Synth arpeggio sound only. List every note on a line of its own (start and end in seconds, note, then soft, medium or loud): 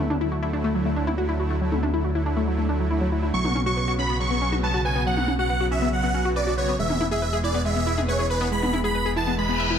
0.10 0.16 D4 medium
0.21 0.26 E4 loud
0.32 0.37 F#4 medium
0.43 0.48 E4 loud
0.53 0.57 D4 loud
0.64 0.70 A3 loud
0.75 0.80 F#3 medium
0.86 0.94 A3 medium
0.96 1.02 D4 loud
1.07 1.13 E4 loud
1.18 1.24 F#4 medium
1.29 1.34 E4 medium
1.40 1.43 F#4 medium
1.50 1.56 A3 loud
1.61 1.67 F#3 medium
1.72 1.80 A3 medium
1.83 1.88 D4 loud
1.94 1.99 E4 loud
2.04 2.10 F#4 medium
2.15 2.21 E4 medium
2.26 2.29 D4 loud
2.37 2.42 A3 loud
2.48 2.53 F#3 medium
2.58 2.67 A3 medium
2.69 2.75 D4 loud
2.80 2.88 F#3 medium
2.91 2.96 E4 medium
3.01 3.07 F#3 medium
3.12 3.18 E4 medium
3.23 3.26 E4 medium
3.34 3.39 F#3 medium
3.45 3.53 B3 medium
3.55 3.61 C#4 loud
3.66 3.72 F#4 loud
3.77 3.83 B4 medium
3.88 3.93 F#4 loud
3.99 4.02 C#4 loud
4.09 4.15 B3 medium
4.20 4.26 F#3 medium
4.31 4.39 B3 medium
4.42 4.47 C#4 medium
4.52 4.58 F#4 loud
4.63 4.69 B4 medium
4.74 4.80 F#4 medium
4.85 4.88 B4 medium
4.96 5.01 B3 loud
5.06 5.12 F#3 medium
5.17 5.26 B3 medium
5.28 5.34 C#4 medium
5.39 5.44 F#4 loud
5.50 5.55 B4 medium
5.61 5.66 F#4 medium
5.71 5.75 C#4 loud
5.82 5.88 B3 medium
5.93 5.98 F#3 medium
6.04 6.12 B3 medium
6.14 6.20 C#4 loud
6.25 6.31 F#4 loud
6.36 6.42 B4 loud
6.47 6.52 F#4 medium
6.58 6.61 B4 medium
6.68 6.74 B3 loud
6.79 6.85 G#3 medium
6.90 6.98 B3 medium
7.01 7.06 E4 loud
7.11 7.17 G#4 loud
7.22 7.28 B4 medium
7.33 7.39 G#4 loud
7.44 7.47 E4 loud
7.54 7.60 B3 medium
7.65 7.71 G#3 medium
7.76 7.84 B3 medium
7.87 7.92 E4 loud
7.98 8.03 G#4 loud
8.08 8.14 B4 loud
8.19 8.25 G#4 loud
8.30 8.33 B4 medium
8.41 8.46 B3 loud
8.52 8.57 G#3 medium
8.63 8.71 B3 medium
8.73 8.79 E4 loud
8.84 8.90 G#4 loud
8.95 9.00 B4 medium
9.06 9.11 G#4 loud
9.17 9.20 E4 loud
9.27 9.33 B3 medium
9.38 9.44 G#3 medium
9.49 9.57 B3 medium
9.60 9.65 E5 loud
9.71 9.76 E4 loud